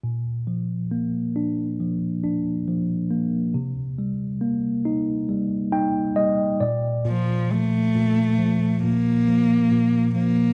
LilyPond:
<<
  \new Staff \with { instrumentName = "Cello" } { \time 4/4 \key bes \major \tempo 4 = 68 r1 | r1 | f8 a4. bes4. bes8 | }
  \new Staff \with { instrumentName = "Tine electric piano" } { \clef bass \time 4/4 \key bes \major bes,8 f8 bes8 d'8 f8 d'8 f8 bes8 | c8 g8 bes8 ees'8 g8 <ees' g''>8 <g ees''>8 <bes, d''>8 | bes,8 f8 bes,8 f8 bes,8 f8 bes,8 f8 | }
>>